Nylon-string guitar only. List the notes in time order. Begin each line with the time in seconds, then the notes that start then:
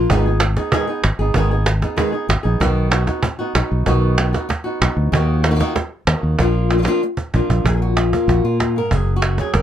0.11 D#3 G#3 B3 D#4 G#4
0.26 B3 D#4 G#4
0.41 muted nylon-string guitar stroke
0.57 B3 D#4 G#4
0.72 D#3 G#3 B3 D#4 G#4
0.87 B3 D#4 G#4
1.03 muted nylon-string guitar stroke
1.19 B3 D#4 G#4
1.35 D#3 G#3 B3 D#4 G#4
1.51 B3 D#4 G#4
1.66 muted nylon-string guitar stroke
1.82 B3 D#4 G#4
1.96 D#3 G#3 B3 D#4 G#4
2.12 B3 D#4 G#4
2.28 muted nylon-string guitar stroke
2.43 B3 D#4 G#4
2.60 B2 D#3 B3 D#4 F#4
2.90 D#3 B3 D#4 F#4
3.07 B3 D#4 F#4
3.23 muted nylon-string guitar stroke
3.39 B3 D#4 F#4
3.55 B3 D#4 F#4
3.86 B2 D#3 B3 D#4 F#4
4.18 D#3 B3 D#4 F#4
4.33 B3 D#4 F#4
4.49 muted nylon-string guitar stroke
4.64 B3 D#4 F#4
4.81 B3 D#4 F#4
5.12 D#3 A#3 D#4 F#4
5.43 D#3 A#3 D#4 F#4
5.51 D#3 A#3 D#4 F#4
5.56 D#3 A#3 D#4 F#4
5.60 A#3 D#4 F#4
5.75 muted nylon-string guitar stroke
6.07 D#3 A#3 D#4 F#4
6.39 F3 A#3 D4 F4
6.72 A#3 D4 F4
6.78 F3 A#3 D4 F4
6.82 F3 A#3 D4 F4
6.87 F3 A#3 D4 F4
7.03 muted nylon-string guitar stroke
7.34 F3 A#3 D4 F4
7.65 A#2 G#4
7.77 G#4
7.82 F#4
7.98 F4
8.14 A#3 G#4
8.30 F#4
8.45 F4
8.60 A#2
8.76 G#2 A#4
8.92 F#2 G#4
9.16 F#4
9.38 F#3 G#4
9.54 A#4